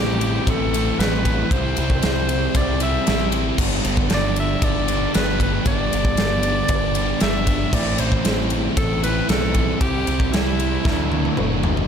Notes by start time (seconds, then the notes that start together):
Already playing: A1 A2 E3 A3 C4 E4 G4
0.00 A3 C4 E4
0.21 C4 E4, ride
0.26 A3
0.47 A1 A2 E3 A3 A4, kick, ride
0.51 C4 E4
0.74 A2 E3 A3 C4 E4, ride
0.99 A1 A2 E3 A3 B4, snare, ride
1.04 C4 E4
1.25 C4 E4, kick, ride
1.30 A3
1.51 C2 C3 G3 C4 C5, kick, ride
1.56 C4 E4
1.77 C2 C4 E4, ride
1.82 G3
1.90 kick
2.02 C2 C3 G3 C4 E4, snare, ride
2.29 C4 E4, ride
2.34 G3
2.55 C2 C3 G3 D5, kick, ride
2.59 C4 E4
2.80 C3 C4 E4 E5, ride
2.86 G3
3.07 A1 C3 G3 C4 E4, snare, ride
3.32 C4 E4, ride
3.37 G3
3.58 G1 G2 D3 G3 B3, kick, crash
3.62 D4
3.84 G1 G3 B3 D4, ride
3.97 kick
4.10 G1 G2 D3 G3 B3, snare, ride
4.14 D4 D5
4.36 G3 B3 D4 E5, ride
4.62 G1 G2 D3 G3 B3 D4 D5, kick, ride
4.88 G2 D3 G3 B3 D4, ride
4.93 G3
5.14 G1 G2 D3 G3 B3 B4, snare, ride
5.19 D4
5.40 B3 D4 B4, kick, ride
5.45 G3
5.65 G1 G2 D3 G3 B3 D4 D5, kick, ride
5.91 G1 B3 D4, ride
5.95 G3
6.05 kick
6.17 G1 G2 D3 G3 B3 D4, snare, ride
6.43 B3 D4, ride
6.47 G3
6.68 G1 G2 D3 G3 B3, kick, ride
6.73 D4
6.94 G2 D3 G3 B3 D4, ride
7.19 G1 G2 D3 G3 B3 E5, snare, ride
7.23 D3 D4
7.47 G3 B3 D4, kick, ride
7.71 A1 A2 E3 A3 C4 E4 D5, kick, crash
7.97 A1 A3 C4 E4 C5, ride
8.01 E4
8.12 kick
8.23 A1 A2 E3 A3 C4 E4, snare, ride
8.50 C4 E4, ride
8.55 A3
8.76 A1 A2 E3 A3 A4, kick, ride
8.81 C4 E4
9.03 A2 E3 A3 C4 E4 B4, ride
9.07 A3
9.27 B1 A2 E3 A3 C4 A4, snare, ride
9.32 E4
9.54 C4 E4, kick, ride
9.59 A3
9.80 C2 C3 G3 C4 E4 G4, kick, ride
10.06 C2 G3 C4 E4, ride
10.20 kick
10.33 C2 C3 G3 C4 E4, snare, ride
10.59 G3 C4 E4, ride
10.85 D2 D3 F#3 A3 D4, kick, snare
11.11 F#3 A3 D4, high tom
11.25 high tom
11.37 F#1 D3 F#3 A3 D4, mid tom
11.63 A3 D4, floor tom
11.68 F#3
11.77 floor tom